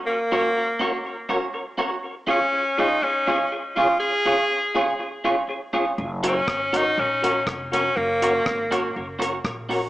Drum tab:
HH |--------|--------|--------|-x-x-x-x|
SD |--------|--------|--------|--r---r-|
BD |--------|--------|--------|--o---o-|

HH |-x-x-x-o|
SD |--r---r-|
BD |--o---o-|